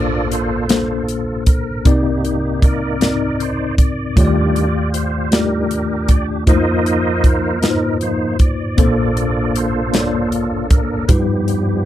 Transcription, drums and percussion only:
0.31 closed hi-hat
0.69 snare, closed hi-hat
1.08 closed hi-hat
1.46 kick, closed hi-hat
1.85 kick, closed hi-hat
2.25 closed hi-hat
2.62 kick, closed hi-hat
3.01 snare, closed hi-hat
3.40 closed hi-hat
3.78 kick, closed hi-hat
4.17 kick, closed hi-hat
4.56 closed hi-hat
4.94 closed hi-hat
5.32 snare, closed hi-hat
5.71 closed hi-hat
6.08 kick, closed hi-hat
6.47 kick, closed hi-hat
6.86 closed hi-hat
7.24 kick, closed hi-hat
7.63 snare, closed hi-hat
8.01 closed hi-hat
8.39 kick, closed hi-hat
8.78 kick, closed hi-hat
9.17 closed hi-hat
9.55 closed hi-hat
9.94 snare, closed hi-hat
10.32 closed hi-hat
10.70 kick, closed hi-hat
11.09 kick, closed hi-hat
11.48 closed hi-hat

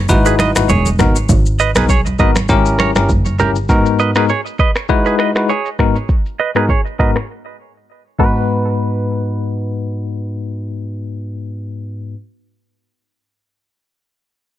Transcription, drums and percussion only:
0.09 kick, shaker
0.26 shaker
0.39 finger snap, cross-stick, high conga, shaker
0.56 finger snap, cross-stick, high conga, shaker
0.69 shaker
0.86 high conga, shaker
0.99 finger snap, kick, cross-stick, low conga, shaker
1.16 shaker
1.29 kick, low conga, shaker
1.46 shaker
1.59 shaker
1.75 finger snap, cross-stick, high conga, shaker
1.89 kick, shaker
2.06 high conga, shaker
2.19 kick, shaker
2.36 finger snap, cross-stick, high conga, shaker
2.49 kick, shaker
2.66 shaker
2.79 finger snap, cross-stick, high conga, shaker
2.96 finger snap, cross-stick, high conga, shaker
3.09 kick, shaker
3.26 high conga, shaker
3.39 low conga, shaker
3.56 shaker
3.69 kick, shaker
3.86 shaker
3.99 shaker
4.15 finger snap, cross-stick, shaker
4.29 shaker
4.46 shaker
4.59 kick, shaker
4.76 finger snap, cross-stick, shaker
4.89 kick, shaker
5.06 shaker
5.19 finger snap, cross-stick, shaker
5.36 finger snap, cross-stick, shaker
5.49 shaker
5.66 shaker
5.79 finger snap, kick, cross-stick, shaker
5.96 shaker
6.09 kick, shaker
6.26 shaker
6.39 shaker
6.56 finger snap, cross-stick, shaker
6.69 kick, shaker
6.86 shaker
6.99 kick, shaker
7.16 finger snap, cross-stick, shaker
8.19 kick, crash

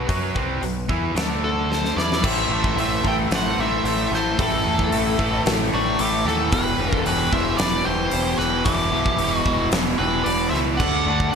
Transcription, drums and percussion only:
0.09 kick, open hi-hat
0.36 kick
0.63 open hi-hat
0.89 kick
1.17 snare, open hi-hat
1.72 snare
1.85 snare
1.98 snare
2.12 snare
2.24 kick, crash
2.64 kick
2.78 open hi-hat
3.05 kick
3.31 snare, open hi-hat
3.85 open hi-hat
4.14 snare
4.39 kick, open hi-hat
4.79 kick
4.92 open hi-hat
5.19 kick
5.46 snare, open hi-hat
5.99 open hi-hat
6.27 snare
6.52 kick, open hi-hat
6.93 kick
7.06 open hi-hat
7.33 kick
7.59 snare, open hi-hat
8.11 open hi-hat
8.39 snare
8.65 kick, open hi-hat
9.06 kick
9.18 open hi-hat
9.46 kick
9.72 snare, open hi-hat
10.26 open hi-hat
10.54 snare
10.80 kick, crash
11.20 kick

